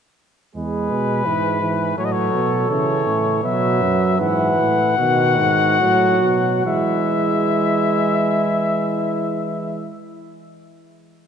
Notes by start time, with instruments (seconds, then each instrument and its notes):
0.55 bass trombone E2, euphonium G#3, flugelhorn G#4, trumpet B4
0.91 bass trombone B2
1.26 bass trombone G#2, euphonium E3, flugelhorn B4
1.61 euphonium E3
1.97 bass trombone A2, euphonium F#3, flugelhorn A4, trumpet C#5
2.05 trumpet D#5
2.12 trumpet C#5
2.33 bass trombone B2
2.70 bass trombone C#3, euphonium E3, trumpet C#5
3.06 bass trombone A2
3.43 bass trombone B2, euphonium F#3, flugelhorn B4, trumpet E5
3.82 bass trombone F#2
4.19 bass trombone G#2, euphonium E3, flugelhorn B4, trumpet F#5
4.59 bass trombone A2
4.98 bass trombone B2, euphonium D#3, flugelhorn F#4
5.39 bass trombone G#2
5.81 bass trombone A2, euphonium F#3
6.23 bass trombone B2
6.66 bass trombone E3, euphonium G#3, flugelhorn E4, trumpet E5